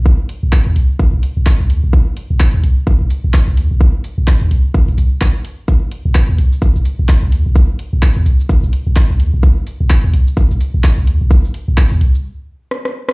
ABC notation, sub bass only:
X:1
M:4/4
L:1/16
Q:"Swing 16ths" 1/4=128
K:Cm
V:1 name="Sub bass" clef=bass
C,, z2 C,, z E,, C,, z2 C,, z C,, z C,, E,, C,,- | C,, z2 C,, z E,, C,, z2 C,, z C,, z C,, E,, C,,- | C,, z2 C,, z E,, C,, z2 C,, C,, z4 z | z3 C,, z E,, C,, z2 C,, z C,, z C,, E,, C,,- |
C,, z2 C,, z E,, C,, z2 C,, z C,, z C,, E,, C,,- | C,, z2 C,, z E,, C,, z2 C,, z C,, z C,, E,, C,,- | C,, z2 C,, z E,, C,, z8 z |]